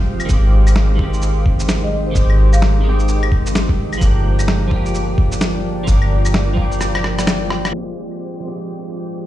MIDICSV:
0, 0, Header, 1, 6, 480
1, 0, Start_track
1, 0, Tempo, 465116
1, 307, Time_signature, 4, 2, 24, 8
1, 9560, End_track
2, 0, Start_track
2, 0, Title_t, "Marimba"
2, 0, Program_c, 0, 12
2, 1897, Note_on_c, 0, 75, 86
2, 1954, Note_off_c, 0, 75, 0
2, 1991, Note_on_c, 0, 75, 80
2, 2083, Note_off_c, 0, 75, 0
2, 2132, Note_on_c, 0, 72, 93
2, 2382, Note_off_c, 0, 72, 0
2, 2608, Note_on_c, 0, 77, 90
2, 3272, Note_off_c, 0, 77, 0
2, 9560, End_track
3, 0, Start_track
3, 0, Title_t, "Ambient pad"
3, 0, Program_c, 1, 92
3, 0, Note_on_c, 1, 56, 75
3, 0, Note_on_c, 1, 67, 74
3, 0, Note_on_c, 1, 72, 82
3, 0, Note_on_c, 1, 77, 86
3, 727, Note_on_c, 1, 63, 88
3, 745, Note_on_c, 1, 79, 67
3, 1676, Note_off_c, 1, 77, 0
3, 4144, Note_off_c, 1, 56, 0
3, 4144, Note_on_c, 1, 58, 83
3, 4151, Note_off_c, 1, 63, 0
3, 4293, Note_on_c, 1, 65, 69
3, 4451, Note_on_c, 1, 74, 81
3, 5700, Note_off_c, 1, 72, 0
3, 7996, Note_on_c, 1, 56, 83
3, 8776, Note_off_c, 1, 58, 0
3, 8895, Note_on_c, 1, 72, 73
3, 9560, Note_off_c, 1, 56, 0
3, 9560, Note_off_c, 1, 65, 0
3, 9560, Note_off_c, 1, 67, 0
3, 9560, Note_off_c, 1, 72, 0
3, 9560, Note_off_c, 1, 74, 0
3, 9560, Note_off_c, 1, 79, 0
3, 9560, End_track
4, 0, Start_track
4, 0, Title_t, "Clean electric guitar"
4, 0, Program_c, 2, 27
4, 0, Note_on_c, 2, 53, 99
4, 0, Note_on_c, 2, 56, 87
4, 0, Note_on_c, 2, 60, 89
4, 0, Note_on_c, 2, 67, 106
4, 258, Note_off_c, 2, 53, 0
4, 262, Note_on_c, 2, 51, 99
4, 275, Note_off_c, 2, 56, 0
4, 290, Note_off_c, 2, 60, 0
4, 293, Note_on_c, 2, 56, 87
4, 304, Note_off_c, 2, 67, 0
4, 317, Note_on_c, 2, 60, 94
4, 344, Note_on_c, 2, 67, 112
4, 973, Note_off_c, 2, 51, 0
4, 986, Note_on_c, 2, 51, 96
4, 997, Note_off_c, 2, 56, 0
4, 1009, Note_off_c, 2, 60, 0
4, 1013, Note_on_c, 2, 56, 90
4, 1023, Note_off_c, 2, 67, 0
4, 1041, Note_on_c, 2, 60, 90
4, 1067, Note_on_c, 2, 67, 109
4, 2169, Note_off_c, 2, 51, 0
4, 2181, Note_on_c, 2, 51, 100
4, 2194, Note_off_c, 2, 56, 0
4, 2206, Note_on_c, 2, 56, 89
4, 2211, Note_off_c, 2, 60, 0
4, 2225, Note_off_c, 2, 67, 0
4, 2237, Note_on_c, 2, 60, 88
4, 2265, Note_on_c, 2, 67, 104
4, 2887, Note_off_c, 2, 51, 0
4, 2899, Note_on_c, 2, 51, 101
4, 2914, Note_off_c, 2, 56, 0
4, 2927, Note_on_c, 2, 56, 92
4, 2930, Note_off_c, 2, 60, 0
4, 2943, Note_off_c, 2, 67, 0
4, 2955, Note_on_c, 2, 60, 90
4, 2984, Note_on_c, 2, 67, 112
4, 4097, Note_off_c, 2, 51, 0
4, 4101, Note_on_c, 2, 53, 98
4, 4114, Note_off_c, 2, 56, 0
4, 4128, Note_off_c, 2, 60, 0
4, 4131, Note_on_c, 2, 58, 90
4, 4143, Note_off_c, 2, 67, 0
4, 4156, Note_on_c, 2, 62, 93
4, 4185, Note_on_c, 2, 67, 109
4, 4812, Note_off_c, 2, 53, 0
4, 4825, Note_on_c, 2, 53, 97
4, 4836, Note_off_c, 2, 58, 0
4, 4849, Note_off_c, 2, 62, 0
4, 4852, Note_on_c, 2, 58, 93
4, 4863, Note_off_c, 2, 67, 0
4, 4881, Note_on_c, 2, 62, 90
4, 4909, Note_on_c, 2, 67, 110
4, 6012, Note_off_c, 2, 53, 0
4, 6025, Note_on_c, 2, 53, 100
4, 6037, Note_off_c, 2, 58, 0
4, 6051, Note_off_c, 2, 62, 0
4, 6052, Note_on_c, 2, 58, 96
4, 6065, Note_off_c, 2, 67, 0
4, 6081, Note_on_c, 2, 62, 86
4, 6108, Note_on_c, 2, 67, 108
4, 6731, Note_off_c, 2, 53, 0
4, 6743, Note_on_c, 2, 53, 97
4, 6757, Note_off_c, 2, 58, 0
4, 6772, Note_off_c, 2, 62, 0
4, 6773, Note_on_c, 2, 58, 87
4, 6785, Note_off_c, 2, 67, 0
4, 6799, Note_on_c, 2, 62, 90
4, 6828, Note_on_c, 2, 67, 112
4, 7933, Note_off_c, 2, 53, 0
4, 7945, Note_on_c, 2, 53, 83
4, 7958, Note_off_c, 2, 58, 0
4, 7970, Note_off_c, 2, 62, 0
4, 7971, Note_on_c, 2, 56, 77
4, 7985, Note_off_c, 2, 67, 0
4, 8000, Note_on_c, 2, 60, 72
4, 8028, Note_on_c, 2, 67, 92
4, 8655, Note_off_c, 2, 53, 0
4, 8668, Note_on_c, 2, 53, 85
4, 8677, Note_off_c, 2, 56, 0
4, 8691, Note_off_c, 2, 60, 0
4, 8696, Note_on_c, 2, 56, 79
4, 8705, Note_off_c, 2, 67, 0
4, 8721, Note_on_c, 2, 60, 79
4, 8748, Note_on_c, 2, 67, 98
4, 9560, Note_off_c, 2, 53, 0
4, 9560, Note_off_c, 2, 56, 0
4, 9560, Note_off_c, 2, 60, 0
4, 9560, Note_off_c, 2, 67, 0
4, 9560, End_track
5, 0, Start_track
5, 0, Title_t, "808-style bass"
5, 0, Program_c, 3, 38
5, 0, Note_on_c, 3, 29, 92
5, 287, Note_off_c, 3, 29, 0
5, 305, Note_on_c, 3, 32, 91
5, 2207, Note_off_c, 3, 32, 0
5, 2223, Note_on_c, 3, 32, 89
5, 4126, Note_off_c, 3, 32, 0
5, 4144, Note_on_c, 3, 31, 86
5, 6046, Note_off_c, 3, 31, 0
5, 6065, Note_on_c, 3, 31, 91
5, 7967, Note_off_c, 3, 31, 0
5, 9560, End_track
6, 0, Start_track
6, 0, Title_t, "Drums"
6, 204, Note_on_c, 9, 75, 49
6, 204, Note_on_c, 9, 82, 30
6, 299, Note_off_c, 9, 82, 0
6, 299, Note_on_c, 9, 82, 54
6, 304, Note_on_c, 9, 36, 119
6, 308, Note_off_c, 9, 75, 0
6, 403, Note_off_c, 9, 82, 0
6, 407, Note_off_c, 9, 36, 0
6, 689, Note_on_c, 9, 75, 35
6, 689, Note_on_c, 9, 82, 56
6, 781, Note_on_c, 9, 38, 103
6, 793, Note_off_c, 9, 75, 0
6, 793, Note_off_c, 9, 82, 0
6, 885, Note_off_c, 9, 38, 0
6, 1024, Note_on_c, 9, 36, 61
6, 1127, Note_off_c, 9, 36, 0
6, 1170, Note_on_c, 9, 82, 29
6, 1260, Note_off_c, 9, 82, 0
6, 1260, Note_on_c, 9, 82, 52
6, 1363, Note_off_c, 9, 82, 0
6, 1504, Note_on_c, 9, 36, 109
6, 1607, Note_off_c, 9, 36, 0
6, 1647, Note_on_c, 9, 82, 51
6, 1741, Note_off_c, 9, 82, 0
6, 1741, Note_on_c, 9, 38, 105
6, 1741, Note_on_c, 9, 82, 57
6, 1844, Note_off_c, 9, 38, 0
6, 1844, Note_off_c, 9, 82, 0
6, 2223, Note_on_c, 9, 36, 115
6, 2223, Note_on_c, 9, 82, 55
6, 2326, Note_off_c, 9, 36, 0
6, 2326, Note_off_c, 9, 82, 0
6, 2371, Note_on_c, 9, 75, 37
6, 2474, Note_off_c, 9, 75, 0
6, 2612, Note_on_c, 9, 75, 37
6, 2612, Note_on_c, 9, 82, 53
6, 2706, Note_on_c, 9, 38, 100
6, 2715, Note_off_c, 9, 75, 0
6, 2715, Note_off_c, 9, 82, 0
6, 2809, Note_off_c, 9, 38, 0
6, 3090, Note_on_c, 9, 82, 30
6, 3182, Note_off_c, 9, 82, 0
6, 3182, Note_on_c, 9, 82, 52
6, 3286, Note_off_c, 9, 82, 0
6, 3332, Note_on_c, 9, 75, 65
6, 3424, Note_on_c, 9, 36, 103
6, 3435, Note_off_c, 9, 75, 0
6, 3527, Note_off_c, 9, 36, 0
6, 3574, Note_on_c, 9, 82, 54
6, 3667, Note_off_c, 9, 82, 0
6, 3667, Note_on_c, 9, 38, 99
6, 3667, Note_on_c, 9, 82, 56
6, 3770, Note_off_c, 9, 38, 0
6, 3770, Note_off_c, 9, 82, 0
6, 3810, Note_on_c, 9, 36, 101
6, 3913, Note_off_c, 9, 36, 0
6, 4052, Note_on_c, 9, 75, 52
6, 4052, Note_on_c, 9, 82, 28
6, 4142, Note_off_c, 9, 82, 0
6, 4142, Note_on_c, 9, 82, 56
6, 4143, Note_on_c, 9, 36, 111
6, 4155, Note_off_c, 9, 75, 0
6, 4245, Note_off_c, 9, 82, 0
6, 4246, Note_off_c, 9, 36, 0
6, 4531, Note_on_c, 9, 75, 38
6, 4531, Note_on_c, 9, 82, 54
6, 4624, Note_on_c, 9, 38, 99
6, 4635, Note_off_c, 9, 75, 0
6, 4635, Note_off_c, 9, 82, 0
6, 4727, Note_off_c, 9, 38, 0
6, 4864, Note_on_c, 9, 36, 58
6, 4967, Note_off_c, 9, 36, 0
6, 5012, Note_on_c, 9, 82, 30
6, 5104, Note_off_c, 9, 82, 0
6, 5104, Note_on_c, 9, 82, 53
6, 5208, Note_off_c, 9, 82, 0
6, 5345, Note_on_c, 9, 36, 105
6, 5448, Note_off_c, 9, 36, 0
6, 5490, Note_on_c, 9, 82, 55
6, 5584, Note_off_c, 9, 82, 0
6, 5584, Note_on_c, 9, 38, 99
6, 5584, Note_on_c, 9, 82, 52
6, 5687, Note_off_c, 9, 38, 0
6, 5687, Note_off_c, 9, 82, 0
6, 6062, Note_on_c, 9, 82, 57
6, 6065, Note_on_c, 9, 36, 109
6, 6165, Note_off_c, 9, 82, 0
6, 6168, Note_off_c, 9, 36, 0
6, 6209, Note_on_c, 9, 75, 36
6, 6312, Note_off_c, 9, 75, 0
6, 6453, Note_on_c, 9, 75, 41
6, 6453, Note_on_c, 9, 82, 57
6, 6545, Note_on_c, 9, 38, 105
6, 6556, Note_off_c, 9, 75, 0
6, 6556, Note_off_c, 9, 82, 0
6, 6648, Note_off_c, 9, 38, 0
6, 6784, Note_on_c, 9, 36, 58
6, 6888, Note_off_c, 9, 36, 0
6, 6933, Note_on_c, 9, 82, 32
6, 7025, Note_off_c, 9, 82, 0
6, 7025, Note_on_c, 9, 37, 64
6, 7025, Note_on_c, 9, 82, 58
6, 7128, Note_off_c, 9, 37, 0
6, 7128, Note_off_c, 9, 82, 0
6, 7173, Note_on_c, 9, 37, 57
6, 7173, Note_on_c, 9, 75, 70
6, 7268, Note_off_c, 9, 37, 0
6, 7268, Note_on_c, 9, 37, 74
6, 7276, Note_off_c, 9, 75, 0
6, 7371, Note_off_c, 9, 37, 0
6, 7416, Note_on_c, 9, 37, 67
6, 7416, Note_on_c, 9, 82, 57
6, 7505, Note_off_c, 9, 37, 0
6, 7505, Note_off_c, 9, 82, 0
6, 7505, Note_on_c, 9, 37, 88
6, 7505, Note_on_c, 9, 38, 105
6, 7505, Note_on_c, 9, 82, 59
6, 7608, Note_off_c, 9, 37, 0
6, 7608, Note_off_c, 9, 38, 0
6, 7608, Note_off_c, 9, 82, 0
6, 7744, Note_on_c, 9, 37, 96
6, 7848, Note_off_c, 9, 37, 0
6, 7895, Note_on_c, 9, 37, 82
6, 7895, Note_on_c, 9, 75, 53
6, 7895, Note_on_c, 9, 82, 30
6, 7998, Note_off_c, 9, 37, 0
6, 7998, Note_off_c, 9, 75, 0
6, 7998, Note_off_c, 9, 82, 0
6, 8372, Note_on_c, 9, 75, 33
6, 8475, Note_off_c, 9, 75, 0
6, 9560, End_track
0, 0, End_of_file